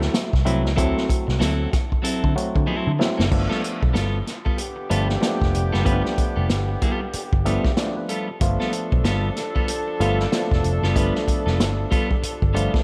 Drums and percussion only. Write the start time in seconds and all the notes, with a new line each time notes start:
0.02 snare
0.14 snare, closed hi-hat
0.33 kick, snare
0.46 closed hi-hat
0.66 snare
0.78 kick, closed hi-hat
0.98 snare
1.10 kick, closed hi-hat
1.29 snare
1.41 snare, closed hi-hat
1.73 kick, snare, closed hi-hat
1.92 kick
2.05 closed hi-hat
2.24 kick
2.38 closed hi-hat
2.56 kick
3.01 snare
3.20 snare
3.32 kick, crash
3.51 snare
3.64 closed hi-hat
3.83 kick
3.95 snare, closed hi-hat
4.27 snare, closed hi-hat
4.46 kick
4.58 closed hi-hat
4.91 closed hi-hat
5.09 snare
5.22 snare, closed hi-hat
5.42 kick, snare
5.55 closed hi-hat
5.74 snare
5.86 kick, closed hi-hat
6.06 snare
6.18 kick, closed hi-hat
6.50 snare, closed hi-hat
6.82 kick, closed hi-hat
7.13 closed hi-hat
7.33 kick
7.46 closed hi-hat
7.65 kick, snare
7.77 snare, closed hi-hat
8.09 closed hi-hat
8.41 kick, closed hi-hat
8.60 snare
8.73 closed hi-hat
8.92 kick
9.05 snare, closed hi-hat
9.36 snare, closed hi-hat
9.56 kick
9.68 closed hi-hat
10.01 closed hi-hat
10.20 snare
10.32 snare, closed hi-hat
10.51 kick, snare
10.64 closed hi-hat
10.83 snare
10.96 kick, closed hi-hat
11.15 snare
11.28 kick, closed hi-hat
11.47 snare
11.60 snare, closed hi-hat
11.92 kick, closed hi-hat
12.11 kick
12.23 closed hi-hat
12.42 kick
12.56 closed hi-hat
12.74 kick, snare